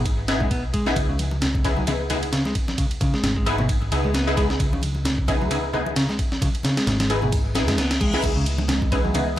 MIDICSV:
0, 0, Header, 1, 7, 480
1, 0, Start_track
1, 0, Key_signature, 4, "minor"
1, 0, Tempo, 454545
1, 1017, Time_signature, 4, 2, 24, 8
1, 9918, End_track
2, 0, Start_track
2, 0, Title_t, "Synth stab"
2, 0, Program_c, 0, 62
2, 297, Note_on_c, 0, 63, 78
2, 297, Note_on_c, 0, 68, 96
2, 298, Note_on_c, 0, 59, 86
2, 298, Note_on_c, 0, 64, 79
2, 446, Note_off_c, 0, 63, 0
2, 446, Note_off_c, 0, 68, 0
2, 447, Note_off_c, 0, 59, 0
2, 447, Note_off_c, 0, 64, 0
2, 911, Note_on_c, 0, 59, 95
2, 912, Note_on_c, 0, 63, 91
2, 912, Note_on_c, 0, 64, 90
2, 912, Note_on_c, 0, 68, 108
2, 986, Note_off_c, 0, 59, 0
2, 986, Note_off_c, 0, 63, 0
2, 986, Note_off_c, 0, 64, 0
2, 986, Note_off_c, 0, 68, 0
2, 1738, Note_on_c, 0, 64, 69
2, 1739, Note_on_c, 0, 59, 74
2, 1739, Note_on_c, 0, 63, 68
2, 1739, Note_on_c, 0, 68, 85
2, 1952, Note_off_c, 0, 64, 0
2, 1953, Note_off_c, 0, 59, 0
2, 1953, Note_off_c, 0, 63, 0
2, 1953, Note_off_c, 0, 68, 0
2, 1979, Note_on_c, 0, 59, 78
2, 1979, Note_on_c, 0, 63, 71
2, 1979, Note_on_c, 0, 64, 68
2, 1979, Note_on_c, 0, 68, 81
2, 2074, Note_off_c, 0, 59, 0
2, 2074, Note_off_c, 0, 63, 0
2, 2074, Note_off_c, 0, 64, 0
2, 2074, Note_off_c, 0, 68, 0
2, 2216, Note_on_c, 0, 64, 80
2, 2217, Note_on_c, 0, 59, 86
2, 2217, Note_on_c, 0, 63, 76
2, 2217, Note_on_c, 0, 68, 97
2, 2312, Note_off_c, 0, 64, 0
2, 2313, Note_off_c, 0, 59, 0
2, 2313, Note_off_c, 0, 63, 0
2, 2313, Note_off_c, 0, 68, 0
2, 3654, Note_on_c, 0, 64, 88
2, 3655, Note_on_c, 0, 59, 96
2, 3655, Note_on_c, 0, 63, 90
2, 3655, Note_on_c, 0, 68, 101
2, 3752, Note_off_c, 0, 59, 0
2, 3752, Note_off_c, 0, 63, 0
2, 3752, Note_off_c, 0, 64, 0
2, 3752, Note_off_c, 0, 68, 0
2, 4137, Note_on_c, 0, 59, 75
2, 4137, Note_on_c, 0, 63, 71
2, 4137, Note_on_c, 0, 64, 71
2, 4137, Note_on_c, 0, 68, 81
2, 4480, Note_off_c, 0, 59, 0
2, 4480, Note_off_c, 0, 63, 0
2, 4480, Note_off_c, 0, 64, 0
2, 4480, Note_off_c, 0, 68, 0
2, 4510, Note_on_c, 0, 63, 94
2, 4510, Note_on_c, 0, 64, 94
2, 4510, Note_on_c, 0, 68, 111
2, 4511, Note_on_c, 0, 59, 99
2, 4585, Note_off_c, 0, 63, 0
2, 4585, Note_off_c, 0, 64, 0
2, 4585, Note_off_c, 0, 68, 0
2, 4586, Note_off_c, 0, 59, 0
2, 4613, Note_on_c, 0, 59, 72
2, 4613, Note_on_c, 0, 68, 80
2, 4614, Note_on_c, 0, 63, 69
2, 4614, Note_on_c, 0, 64, 67
2, 4711, Note_off_c, 0, 59, 0
2, 4711, Note_off_c, 0, 63, 0
2, 4711, Note_off_c, 0, 64, 0
2, 4711, Note_off_c, 0, 68, 0
2, 5574, Note_on_c, 0, 63, 71
2, 5574, Note_on_c, 0, 64, 69
2, 5574, Note_on_c, 0, 68, 85
2, 5575, Note_on_c, 0, 59, 76
2, 5790, Note_off_c, 0, 63, 0
2, 5790, Note_off_c, 0, 64, 0
2, 5790, Note_off_c, 0, 68, 0
2, 5791, Note_off_c, 0, 59, 0
2, 5814, Note_on_c, 0, 59, 73
2, 5814, Note_on_c, 0, 63, 71
2, 5814, Note_on_c, 0, 64, 73
2, 5814, Note_on_c, 0, 68, 86
2, 5911, Note_off_c, 0, 59, 0
2, 5911, Note_off_c, 0, 63, 0
2, 5911, Note_off_c, 0, 64, 0
2, 5911, Note_off_c, 0, 68, 0
2, 6053, Note_on_c, 0, 64, 78
2, 6053, Note_on_c, 0, 68, 97
2, 6054, Note_on_c, 0, 59, 86
2, 6054, Note_on_c, 0, 63, 79
2, 6151, Note_off_c, 0, 59, 0
2, 6151, Note_off_c, 0, 63, 0
2, 6151, Note_off_c, 0, 64, 0
2, 6151, Note_off_c, 0, 68, 0
2, 7495, Note_on_c, 0, 64, 88
2, 7496, Note_on_c, 0, 59, 97
2, 7496, Note_on_c, 0, 63, 90
2, 7496, Note_on_c, 0, 68, 110
2, 7592, Note_off_c, 0, 59, 0
2, 7592, Note_off_c, 0, 63, 0
2, 7592, Note_off_c, 0, 64, 0
2, 7592, Note_off_c, 0, 68, 0
2, 7974, Note_on_c, 0, 64, 81
2, 7974, Note_on_c, 0, 68, 95
2, 7975, Note_on_c, 0, 59, 87
2, 7975, Note_on_c, 0, 63, 82
2, 8125, Note_off_c, 0, 59, 0
2, 8125, Note_off_c, 0, 63, 0
2, 8125, Note_off_c, 0, 64, 0
2, 8125, Note_off_c, 0, 68, 0
2, 8593, Note_on_c, 0, 59, 98
2, 8593, Note_on_c, 0, 63, 88
2, 8593, Note_on_c, 0, 64, 91
2, 8593, Note_on_c, 0, 68, 107
2, 8667, Note_off_c, 0, 59, 0
2, 8667, Note_off_c, 0, 63, 0
2, 8667, Note_off_c, 0, 64, 0
2, 8667, Note_off_c, 0, 68, 0
2, 9418, Note_on_c, 0, 59, 76
2, 9418, Note_on_c, 0, 63, 68
2, 9418, Note_on_c, 0, 64, 68
2, 9418, Note_on_c, 0, 68, 86
2, 9632, Note_off_c, 0, 59, 0
2, 9632, Note_off_c, 0, 63, 0
2, 9632, Note_off_c, 0, 64, 0
2, 9632, Note_off_c, 0, 68, 0
2, 9657, Note_on_c, 0, 64, 71
2, 9658, Note_on_c, 0, 59, 76
2, 9658, Note_on_c, 0, 63, 68
2, 9658, Note_on_c, 0, 68, 86
2, 9753, Note_off_c, 0, 59, 0
2, 9753, Note_off_c, 0, 63, 0
2, 9753, Note_off_c, 0, 64, 0
2, 9753, Note_off_c, 0, 68, 0
2, 9918, End_track
3, 0, Start_track
3, 0, Title_t, "Analog synth pad"
3, 0, Program_c, 1, 89
3, 8694, Note_on_c, 1, 52, 77
3, 8694, Note_on_c, 1, 75, 92
3, 8696, Note_on_c, 1, 49, 84
3, 8696, Note_on_c, 1, 56, 78
3, 8697, Note_on_c, 1, 59, 75
3, 9918, Note_off_c, 1, 49, 0
3, 9918, Note_off_c, 1, 52, 0
3, 9918, Note_off_c, 1, 56, 0
3, 9918, Note_off_c, 1, 59, 0
3, 9918, Note_off_c, 1, 75, 0
3, 9918, End_track
4, 0, Start_track
4, 0, Title_t, "Clean electric guitar"
4, 0, Program_c, 2, 27
4, 432, Note_on_c, 2, 56, 75
4, 526, Note_off_c, 2, 56, 0
4, 536, Note_on_c, 2, 59, 80
4, 665, Note_off_c, 2, 59, 0
4, 777, Note_on_c, 2, 56, 100
4, 905, Note_off_c, 2, 56, 0
4, 1152, Note_on_c, 2, 49, 78
4, 1235, Note_off_c, 2, 49, 0
4, 1737, Note_on_c, 2, 61, 76
4, 1801, Note_off_c, 2, 61, 0
4, 1871, Note_on_c, 2, 54, 69
4, 1971, Note_off_c, 2, 54, 0
4, 1976, Note_on_c, 2, 49, 82
4, 2041, Note_off_c, 2, 49, 0
4, 2455, Note_on_c, 2, 49, 99
4, 2563, Note_off_c, 2, 49, 0
4, 2593, Note_on_c, 2, 56, 74
4, 2675, Note_off_c, 2, 56, 0
4, 2938, Note_on_c, 2, 49, 77
4, 3002, Note_off_c, 2, 49, 0
4, 3176, Note_on_c, 2, 49, 96
4, 3305, Note_off_c, 2, 49, 0
4, 3311, Note_on_c, 2, 56, 71
4, 3538, Note_off_c, 2, 56, 0
4, 3553, Note_on_c, 2, 56, 76
4, 3636, Note_off_c, 2, 56, 0
4, 3791, Note_on_c, 2, 47, 97
4, 3875, Note_off_c, 2, 47, 0
4, 4272, Note_on_c, 2, 56, 74
4, 4366, Note_off_c, 2, 56, 0
4, 4378, Note_on_c, 2, 59, 79
4, 4506, Note_off_c, 2, 59, 0
4, 4615, Note_on_c, 2, 56, 94
4, 4744, Note_off_c, 2, 56, 0
4, 4994, Note_on_c, 2, 49, 78
4, 5076, Note_off_c, 2, 49, 0
4, 5578, Note_on_c, 2, 61, 76
4, 5641, Note_off_c, 2, 61, 0
4, 5712, Note_on_c, 2, 54, 73
4, 5812, Note_off_c, 2, 54, 0
4, 5816, Note_on_c, 2, 49, 79
4, 5881, Note_off_c, 2, 49, 0
4, 6295, Note_on_c, 2, 49, 104
4, 6403, Note_off_c, 2, 49, 0
4, 6432, Note_on_c, 2, 56, 73
4, 6515, Note_off_c, 2, 56, 0
4, 6774, Note_on_c, 2, 49, 81
4, 6840, Note_off_c, 2, 49, 0
4, 7017, Note_on_c, 2, 49, 100
4, 7145, Note_off_c, 2, 49, 0
4, 7153, Note_on_c, 2, 56, 75
4, 7379, Note_off_c, 2, 56, 0
4, 7393, Note_on_c, 2, 56, 76
4, 7476, Note_off_c, 2, 56, 0
4, 7631, Note_on_c, 2, 47, 99
4, 7714, Note_off_c, 2, 47, 0
4, 8112, Note_on_c, 2, 56, 78
4, 8206, Note_off_c, 2, 56, 0
4, 8217, Note_on_c, 2, 59, 81
4, 8345, Note_off_c, 2, 59, 0
4, 8456, Note_on_c, 2, 56, 99
4, 8585, Note_off_c, 2, 56, 0
4, 8834, Note_on_c, 2, 49, 79
4, 8916, Note_off_c, 2, 49, 0
4, 9421, Note_on_c, 2, 61, 75
4, 9483, Note_off_c, 2, 61, 0
4, 9554, Note_on_c, 2, 54, 70
4, 9653, Note_off_c, 2, 54, 0
4, 9659, Note_on_c, 2, 49, 83
4, 9722, Note_off_c, 2, 49, 0
4, 9918, End_track
5, 0, Start_track
5, 0, Title_t, "Picked electric bass"
5, 0, Program_c, 3, 34
5, 0, Note_on_c, 3, 32, 97
5, 433, Note_off_c, 3, 32, 0
5, 433, Note_on_c, 3, 35, 100
5, 985, Note_off_c, 3, 35, 0
5, 1017, Note_on_c, 3, 37, 97
5, 3385, Note_off_c, 3, 37, 0
5, 3417, Note_on_c, 3, 32, 95
5, 4105, Note_off_c, 3, 32, 0
5, 4138, Note_on_c, 3, 37, 102
5, 4825, Note_off_c, 3, 37, 0
5, 4858, Note_on_c, 3, 37, 97
5, 7225, Note_off_c, 3, 37, 0
5, 7256, Note_on_c, 3, 32, 97
5, 8110, Note_off_c, 3, 32, 0
5, 8110, Note_on_c, 3, 42, 101
5, 8215, Note_off_c, 3, 42, 0
5, 8215, Note_on_c, 3, 37, 98
5, 8664, Note_off_c, 3, 37, 0
5, 8697, Note_on_c, 3, 37, 99
5, 9918, Note_off_c, 3, 37, 0
5, 9918, End_track
6, 0, Start_track
6, 0, Title_t, "Reverse cymbal"
6, 0, Program_c, 4, 119
6, 7736, Note_on_c, 4, 60, 76
6, 8696, Note_off_c, 4, 60, 0
6, 9918, End_track
7, 0, Start_track
7, 0, Title_t, "Drums"
7, 58, Note_on_c, 9, 36, 108
7, 58, Note_on_c, 9, 51, 84
7, 164, Note_off_c, 9, 36, 0
7, 164, Note_off_c, 9, 51, 0
7, 298, Note_on_c, 9, 38, 99
7, 298, Note_on_c, 9, 51, 77
7, 403, Note_off_c, 9, 38, 0
7, 403, Note_off_c, 9, 51, 0
7, 426, Note_on_c, 9, 64, 72
7, 433, Note_on_c, 9, 36, 89
7, 532, Note_off_c, 9, 64, 0
7, 538, Note_off_c, 9, 36, 0
7, 538, Note_on_c, 9, 36, 86
7, 538, Note_on_c, 9, 51, 61
7, 643, Note_off_c, 9, 51, 0
7, 644, Note_off_c, 9, 36, 0
7, 778, Note_on_c, 9, 36, 89
7, 778, Note_on_c, 9, 51, 64
7, 883, Note_off_c, 9, 51, 0
7, 884, Note_off_c, 9, 36, 0
7, 912, Note_on_c, 9, 38, 56
7, 1012, Note_on_c, 9, 62, 44
7, 1017, Note_on_c, 9, 51, 85
7, 1018, Note_off_c, 9, 38, 0
7, 1018, Note_on_c, 9, 36, 104
7, 1118, Note_off_c, 9, 62, 0
7, 1123, Note_off_c, 9, 36, 0
7, 1123, Note_off_c, 9, 51, 0
7, 1255, Note_on_c, 9, 63, 79
7, 1258, Note_on_c, 9, 51, 68
7, 1361, Note_off_c, 9, 63, 0
7, 1364, Note_off_c, 9, 51, 0
7, 1387, Note_on_c, 9, 62, 66
7, 1492, Note_off_c, 9, 62, 0
7, 1493, Note_on_c, 9, 64, 82
7, 1498, Note_on_c, 9, 38, 117
7, 1498, Note_on_c, 9, 51, 90
7, 1598, Note_off_c, 9, 64, 0
7, 1604, Note_off_c, 9, 38, 0
7, 1604, Note_off_c, 9, 51, 0
7, 1633, Note_on_c, 9, 36, 97
7, 1637, Note_on_c, 9, 62, 49
7, 1737, Note_off_c, 9, 36, 0
7, 1737, Note_on_c, 9, 36, 92
7, 1737, Note_on_c, 9, 51, 66
7, 1740, Note_on_c, 9, 63, 59
7, 1743, Note_off_c, 9, 62, 0
7, 1843, Note_off_c, 9, 36, 0
7, 1843, Note_off_c, 9, 51, 0
7, 1846, Note_off_c, 9, 63, 0
7, 1867, Note_on_c, 9, 64, 75
7, 1973, Note_off_c, 9, 64, 0
7, 1976, Note_on_c, 9, 51, 85
7, 1984, Note_on_c, 9, 62, 81
7, 2081, Note_off_c, 9, 51, 0
7, 2090, Note_off_c, 9, 62, 0
7, 2216, Note_on_c, 9, 51, 68
7, 2218, Note_on_c, 9, 62, 52
7, 2222, Note_on_c, 9, 64, 85
7, 2322, Note_off_c, 9, 51, 0
7, 2323, Note_off_c, 9, 62, 0
7, 2328, Note_off_c, 9, 64, 0
7, 2352, Note_on_c, 9, 51, 44
7, 2457, Note_off_c, 9, 51, 0
7, 2457, Note_on_c, 9, 38, 110
7, 2457, Note_on_c, 9, 51, 85
7, 2562, Note_off_c, 9, 38, 0
7, 2562, Note_off_c, 9, 51, 0
7, 2590, Note_on_c, 9, 38, 38
7, 2590, Note_on_c, 9, 62, 72
7, 2695, Note_on_c, 9, 51, 63
7, 2696, Note_off_c, 9, 38, 0
7, 2696, Note_off_c, 9, 62, 0
7, 2697, Note_on_c, 9, 36, 90
7, 2801, Note_off_c, 9, 51, 0
7, 2802, Note_off_c, 9, 36, 0
7, 2831, Note_on_c, 9, 38, 52
7, 2831, Note_on_c, 9, 62, 49
7, 2837, Note_on_c, 9, 63, 58
7, 2936, Note_on_c, 9, 51, 85
7, 2937, Note_off_c, 9, 38, 0
7, 2937, Note_off_c, 9, 62, 0
7, 2937, Note_on_c, 9, 36, 104
7, 2943, Note_off_c, 9, 63, 0
7, 3042, Note_off_c, 9, 36, 0
7, 3042, Note_off_c, 9, 51, 0
7, 3072, Note_on_c, 9, 51, 44
7, 3177, Note_on_c, 9, 36, 100
7, 3178, Note_off_c, 9, 51, 0
7, 3178, Note_on_c, 9, 51, 70
7, 3178, Note_on_c, 9, 62, 74
7, 3283, Note_off_c, 9, 36, 0
7, 3283, Note_off_c, 9, 51, 0
7, 3283, Note_off_c, 9, 62, 0
7, 3313, Note_on_c, 9, 38, 52
7, 3414, Note_on_c, 9, 64, 89
7, 3416, Note_on_c, 9, 62, 48
7, 3418, Note_off_c, 9, 38, 0
7, 3418, Note_on_c, 9, 38, 116
7, 3418, Note_on_c, 9, 51, 89
7, 3520, Note_off_c, 9, 64, 0
7, 3521, Note_off_c, 9, 62, 0
7, 3524, Note_off_c, 9, 38, 0
7, 3524, Note_off_c, 9, 51, 0
7, 3553, Note_on_c, 9, 36, 93
7, 3645, Note_on_c, 9, 63, 61
7, 3658, Note_off_c, 9, 36, 0
7, 3659, Note_on_c, 9, 51, 66
7, 3751, Note_off_c, 9, 63, 0
7, 3765, Note_off_c, 9, 51, 0
7, 3785, Note_on_c, 9, 62, 82
7, 3791, Note_on_c, 9, 64, 80
7, 3890, Note_off_c, 9, 62, 0
7, 3896, Note_off_c, 9, 64, 0
7, 3897, Note_on_c, 9, 36, 112
7, 3898, Note_on_c, 9, 51, 86
7, 4003, Note_off_c, 9, 36, 0
7, 4004, Note_off_c, 9, 51, 0
7, 4031, Note_on_c, 9, 62, 52
7, 4136, Note_off_c, 9, 62, 0
7, 4138, Note_on_c, 9, 51, 67
7, 4243, Note_off_c, 9, 51, 0
7, 4266, Note_on_c, 9, 64, 70
7, 4371, Note_off_c, 9, 64, 0
7, 4372, Note_on_c, 9, 62, 69
7, 4377, Note_on_c, 9, 38, 112
7, 4377, Note_on_c, 9, 51, 87
7, 4477, Note_off_c, 9, 62, 0
7, 4483, Note_off_c, 9, 38, 0
7, 4483, Note_off_c, 9, 51, 0
7, 4617, Note_on_c, 9, 36, 89
7, 4618, Note_on_c, 9, 62, 49
7, 4619, Note_on_c, 9, 51, 64
7, 4722, Note_off_c, 9, 36, 0
7, 4724, Note_off_c, 9, 51, 0
7, 4724, Note_off_c, 9, 62, 0
7, 4753, Note_on_c, 9, 38, 58
7, 4857, Note_on_c, 9, 36, 111
7, 4857, Note_on_c, 9, 51, 84
7, 4859, Note_off_c, 9, 38, 0
7, 4963, Note_off_c, 9, 36, 0
7, 4963, Note_off_c, 9, 51, 0
7, 4994, Note_on_c, 9, 62, 79
7, 5087, Note_on_c, 9, 63, 74
7, 5098, Note_on_c, 9, 51, 70
7, 5100, Note_off_c, 9, 62, 0
7, 5192, Note_off_c, 9, 63, 0
7, 5204, Note_off_c, 9, 51, 0
7, 5224, Note_on_c, 9, 62, 51
7, 5330, Note_off_c, 9, 62, 0
7, 5330, Note_on_c, 9, 64, 83
7, 5337, Note_on_c, 9, 38, 122
7, 5337, Note_on_c, 9, 51, 93
7, 5436, Note_off_c, 9, 64, 0
7, 5442, Note_off_c, 9, 38, 0
7, 5442, Note_off_c, 9, 51, 0
7, 5472, Note_on_c, 9, 36, 90
7, 5570, Note_on_c, 9, 63, 60
7, 5576, Note_on_c, 9, 62, 73
7, 5577, Note_off_c, 9, 36, 0
7, 5577, Note_on_c, 9, 36, 92
7, 5578, Note_on_c, 9, 51, 68
7, 5676, Note_off_c, 9, 63, 0
7, 5682, Note_off_c, 9, 62, 0
7, 5683, Note_off_c, 9, 36, 0
7, 5684, Note_off_c, 9, 51, 0
7, 5719, Note_on_c, 9, 64, 79
7, 5817, Note_on_c, 9, 51, 84
7, 5821, Note_on_c, 9, 62, 52
7, 5825, Note_off_c, 9, 64, 0
7, 5923, Note_off_c, 9, 51, 0
7, 5926, Note_off_c, 9, 62, 0
7, 6056, Note_on_c, 9, 64, 88
7, 6162, Note_off_c, 9, 64, 0
7, 6192, Note_on_c, 9, 62, 76
7, 6297, Note_on_c, 9, 38, 118
7, 6297, Note_on_c, 9, 51, 91
7, 6298, Note_off_c, 9, 62, 0
7, 6403, Note_off_c, 9, 38, 0
7, 6403, Note_off_c, 9, 51, 0
7, 6433, Note_on_c, 9, 38, 39
7, 6433, Note_on_c, 9, 62, 50
7, 6537, Note_on_c, 9, 36, 89
7, 6537, Note_on_c, 9, 51, 63
7, 6539, Note_off_c, 9, 38, 0
7, 6539, Note_off_c, 9, 62, 0
7, 6642, Note_off_c, 9, 36, 0
7, 6642, Note_off_c, 9, 51, 0
7, 6673, Note_on_c, 9, 38, 53
7, 6674, Note_on_c, 9, 63, 54
7, 6778, Note_on_c, 9, 36, 102
7, 6779, Note_off_c, 9, 38, 0
7, 6779, Note_on_c, 9, 51, 85
7, 6780, Note_off_c, 9, 63, 0
7, 6782, Note_on_c, 9, 62, 84
7, 6883, Note_off_c, 9, 36, 0
7, 6884, Note_off_c, 9, 51, 0
7, 6887, Note_off_c, 9, 62, 0
7, 6914, Note_on_c, 9, 51, 42
7, 7004, Note_on_c, 9, 62, 57
7, 7012, Note_on_c, 9, 63, 82
7, 7018, Note_off_c, 9, 51, 0
7, 7018, Note_on_c, 9, 38, 106
7, 7018, Note_on_c, 9, 51, 81
7, 7110, Note_off_c, 9, 62, 0
7, 7118, Note_off_c, 9, 63, 0
7, 7124, Note_off_c, 9, 38, 0
7, 7124, Note_off_c, 9, 51, 0
7, 7153, Note_on_c, 9, 38, 109
7, 7153, Note_on_c, 9, 51, 82
7, 7257, Note_off_c, 9, 38, 0
7, 7257, Note_off_c, 9, 51, 0
7, 7257, Note_on_c, 9, 38, 109
7, 7257, Note_on_c, 9, 51, 80
7, 7258, Note_on_c, 9, 64, 96
7, 7363, Note_off_c, 9, 38, 0
7, 7363, Note_off_c, 9, 51, 0
7, 7364, Note_off_c, 9, 64, 0
7, 7390, Note_on_c, 9, 62, 84
7, 7392, Note_on_c, 9, 38, 103
7, 7392, Note_on_c, 9, 51, 77
7, 7491, Note_on_c, 9, 63, 57
7, 7496, Note_off_c, 9, 51, 0
7, 7496, Note_off_c, 9, 62, 0
7, 7496, Note_on_c, 9, 51, 65
7, 7498, Note_off_c, 9, 38, 0
7, 7597, Note_off_c, 9, 63, 0
7, 7602, Note_off_c, 9, 51, 0
7, 7624, Note_on_c, 9, 62, 57
7, 7629, Note_on_c, 9, 64, 80
7, 7730, Note_off_c, 9, 62, 0
7, 7734, Note_on_c, 9, 51, 86
7, 7735, Note_off_c, 9, 64, 0
7, 7736, Note_on_c, 9, 36, 108
7, 7840, Note_off_c, 9, 51, 0
7, 7842, Note_off_c, 9, 36, 0
7, 7970, Note_on_c, 9, 62, 82
7, 7976, Note_on_c, 9, 38, 103
7, 7976, Note_on_c, 9, 51, 76
7, 8075, Note_off_c, 9, 62, 0
7, 8082, Note_off_c, 9, 38, 0
7, 8082, Note_off_c, 9, 51, 0
7, 8106, Note_on_c, 9, 64, 76
7, 8112, Note_on_c, 9, 38, 107
7, 8112, Note_on_c, 9, 51, 82
7, 8211, Note_off_c, 9, 64, 0
7, 8216, Note_off_c, 9, 38, 0
7, 8216, Note_off_c, 9, 51, 0
7, 8216, Note_on_c, 9, 38, 104
7, 8216, Note_on_c, 9, 51, 80
7, 8219, Note_on_c, 9, 62, 53
7, 8322, Note_off_c, 9, 38, 0
7, 8322, Note_off_c, 9, 51, 0
7, 8324, Note_off_c, 9, 62, 0
7, 8352, Note_on_c, 9, 38, 106
7, 8352, Note_on_c, 9, 51, 78
7, 8450, Note_on_c, 9, 63, 86
7, 8457, Note_off_c, 9, 38, 0
7, 8457, Note_off_c, 9, 51, 0
7, 8457, Note_on_c, 9, 36, 90
7, 8457, Note_on_c, 9, 51, 63
7, 8556, Note_off_c, 9, 63, 0
7, 8562, Note_off_c, 9, 36, 0
7, 8562, Note_off_c, 9, 51, 0
7, 8587, Note_on_c, 9, 62, 75
7, 8591, Note_on_c, 9, 38, 57
7, 8693, Note_off_c, 9, 62, 0
7, 8696, Note_off_c, 9, 38, 0
7, 8696, Note_on_c, 9, 36, 102
7, 8696, Note_on_c, 9, 49, 88
7, 8696, Note_on_c, 9, 51, 84
7, 8701, Note_on_c, 9, 62, 55
7, 8802, Note_off_c, 9, 36, 0
7, 8802, Note_off_c, 9, 49, 0
7, 8802, Note_off_c, 9, 51, 0
7, 8807, Note_off_c, 9, 62, 0
7, 8937, Note_on_c, 9, 51, 70
7, 9042, Note_off_c, 9, 51, 0
7, 9064, Note_on_c, 9, 62, 89
7, 9168, Note_on_c, 9, 64, 100
7, 9169, Note_off_c, 9, 62, 0
7, 9176, Note_on_c, 9, 38, 121
7, 9176, Note_on_c, 9, 51, 92
7, 9274, Note_off_c, 9, 64, 0
7, 9281, Note_off_c, 9, 38, 0
7, 9281, Note_off_c, 9, 51, 0
7, 9312, Note_on_c, 9, 36, 94
7, 9312, Note_on_c, 9, 63, 90
7, 9315, Note_on_c, 9, 62, 56
7, 9417, Note_off_c, 9, 63, 0
7, 9418, Note_off_c, 9, 36, 0
7, 9418, Note_on_c, 9, 36, 94
7, 9418, Note_on_c, 9, 51, 66
7, 9421, Note_off_c, 9, 62, 0
7, 9523, Note_off_c, 9, 36, 0
7, 9524, Note_off_c, 9, 51, 0
7, 9553, Note_on_c, 9, 64, 72
7, 9655, Note_on_c, 9, 62, 82
7, 9659, Note_off_c, 9, 64, 0
7, 9659, Note_on_c, 9, 51, 88
7, 9760, Note_off_c, 9, 62, 0
7, 9765, Note_off_c, 9, 51, 0
7, 9918, End_track
0, 0, End_of_file